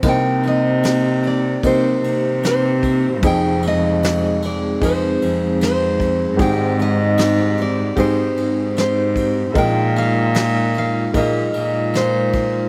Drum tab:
CC |x-------|--------|--------|--------|
RD |-xxxxxxx|xxxxxxxx|xxxxxxxx|xxxxxxxx|
SD |--o---o-|--o---o-|--o---o-|--o---o-|
BD |o---o--o|o---o--o|o---o--o|o---o--o|